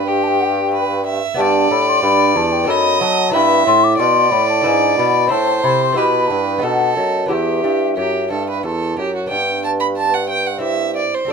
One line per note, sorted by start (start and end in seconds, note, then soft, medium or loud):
0.00 1.21 G2 medium
0.00 1.34 G2 medium
0.00 1.32 B3 medium
0.00 1.32 D4 medium
0.00 1.33 G4 medium
0.06 0.73 G4 medium
0.06 0.24 G5 loud
0.23 0.29 A5 loud
0.28 0.41 G5 loud
0.40 0.46 F#5 loud
0.45 1.08 G5 loud
0.74 1.05 B4 medium
1.06 1.42 E5 medium
1.34 1.68 B3 medium
1.34 1.68 D4 medium
1.34 2.64 G4 medium
1.34 1.73 A5 loud
1.38 1.68 G2 medium
1.38 2.71 D5 medium
1.71 2.00 A2 medium
1.71 2.02 A2 medium
1.71 1.90 B5 loud
1.89 2.02 C6 loud
2.02 2.37 G2 medium
2.02 2.32 G2 medium
2.02 2.38 B5 loud
2.35 2.67 E2 medium
2.35 2.65 E2 medium
2.35 2.54 A5 loud
2.52 2.70 G5 loud
2.64 3.02 F#2 medium
2.64 3.28 B3 medium
2.64 3.30 D#4 medium
2.64 3.31 A4 medium
2.68 2.97 F#2 medium
2.68 3.33 D#5 medium
2.68 3.01 B5 loud
3.01 3.30 F#3 medium
3.01 3.33 F#3 medium
3.01 3.36 A5 loud
3.30 3.63 B3 medium
3.30 4.60 E4 medium
3.30 4.61 B4 medium
3.34 3.65 G2 medium
3.34 3.63 G2 medium
3.34 3.97 E5 medium
3.34 3.66 B5 loud
3.66 4.01 A2 medium
3.66 3.96 A2 medium
3.66 3.85 C6 loud
3.84 4.01 D6 loud
3.98 4.29 B2 medium
3.98 4.31 B2 medium
3.98 5.28 D5 loud
3.98 4.33 C6 loud
4.31 4.61 A2 medium
4.31 4.64 A2 medium
4.31 4.48 B5 loud
4.49 4.65 A5 loud
4.61 5.27 D4 medium
4.61 5.28 E4 medium
4.61 5.28 B4 medium
4.65 4.97 G#2 medium
4.65 4.95 G#2 medium
4.65 4.97 G#5 loud
4.97 5.30 B2 medium
4.97 5.28 B2 medium
4.97 5.33 B5 loud
5.27 5.63 A2 medium
5.27 5.92 C4 medium
5.27 5.93 E4 medium
5.27 5.95 A4 medium
5.31 5.61 A2 medium
5.31 5.99 C5 medium
5.31 5.66 A5 loud
5.63 5.96 C3 medium
5.63 5.93 C3 medium
5.63 5.84 B5 loud
5.82 5.98 C6 medium
5.92 6.31 B2 medium
5.92 6.57 B3 medium
5.92 6.59 E4 medium
5.92 6.60 G4 medium
5.96 6.27 B2 medium
5.96 6.66 B4 medium
5.96 6.29 B5 loud
6.27 6.65 G2 medium
6.27 6.60 G2 medium
6.27 6.45 A5 medium
6.46 6.63 G5 medium
6.58 7.25 B3 medium
6.58 7.26 D#4 medium
6.58 7.27 A4 medium
6.58 6.94 F#5 medium
6.63 6.96 B2 medium
6.63 6.93 B2 medium
6.63 7.29 A4 medium
6.95 7.26 F#2 medium
6.95 7.32 F#2 medium
6.95 7.28 D#5 medium
7.26 7.93 B3 soft
7.26 9.26 E4 soft
7.26 9.27 G4 medium
7.26 7.89 G4 medium
7.26 7.34 F#5 medium
7.30 7.63 E2 medium
7.30 7.61 E2 medium
7.30 8.61 E5 medium
7.63 7.96 G2 medium
7.63 7.94 G2 medium
7.96 8.32 F#2 medium
7.96 8.27 F#2 medium
7.96 8.28 G4 medium
8.30 8.61 G2 medium
8.30 8.66 G2 medium
8.30 8.47 A4 medium
8.50 8.65 B4 medium
8.63 8.94 E2 medium
8.63 8.97 E2 medium
8.63 8.98 A4 medium
8.97 9.27 F#2 medium
8.97 9.30 F#2 medium
8.97 9.15 G4 medium
9.16 9.29 F#4 medium
9.26 10.57 B3 soft
9.26 10.58 D4 soft
9.26 10.59 G4 soft
9.26 9.61 G5 medium
9.31 11.25 G2 soft
9.31 11.12 G2 medium
9.31 10.60 B4 medium
9.64 9.71 A5 medium
9.80 9.87 B5 medium
9.97 10.15 A5 medium
10.14 10.29 F#5 medium
10.30 10.48 G5 medium
10.47 10.61 F#5 medium
10.58 11.24 C4 soft
10.58 11.25 E4 soft
10.58 11.26 G4 soft
10.58 10.94 E5 medium
10.63 11.30 C5 medium
10.96 11.16 D5 medium
11.14 11.32 C5 medium
11.25 11.33 F#2 medium
11.25 11.33 F#2 soft
11.25 11.33 C4 soft
11.25 11.33 D4 soft
11.25 11.33 A4 soft
11.25 11.33 D5 medium